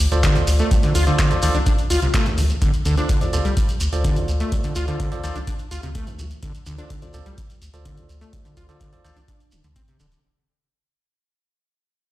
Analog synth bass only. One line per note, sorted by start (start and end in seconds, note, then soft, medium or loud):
0.12 0.26 D2 medium
0.47 0.62 D2 medium
0.95 1.10 D2 loud
1.43 1.50 D2 medium
1.55 1.69 C2 medium
1.90 1.98 D2 medium
2.02 2.17 C2 medium
2.38 2.52 D2 loud
2.85 3.00 D2 loud
3.33 3.40 D2 medium
3.45 3.60 C2 medium
3.81 3.88 D2 medium
3.93 4.07 D2 medium
4.28 4.43 D2 medium
4.76 4.91 D2 loud
5.24 5.31 D2 medium
5.36 5.50 C2 medium
5.71 5.79 D2 medium
5.83 5.98 D2 medium
6.19 6.33 D2 medium
6.66 6.81 D2 loud
7.14 7.21 D2 loud
7.26 7.40 C2 medium
7.62 7.69 D2 medium
7.74 7.88 D2 medium
8.09 8.24 D2 medium
8.57 8.71 D2 medium
9.04 9.12 D2 medium
9.16 9.31 C2 medium
9.52 9.59 D1 medium
9.64 9.78 D2 medium
10.00 10.14 D1 medium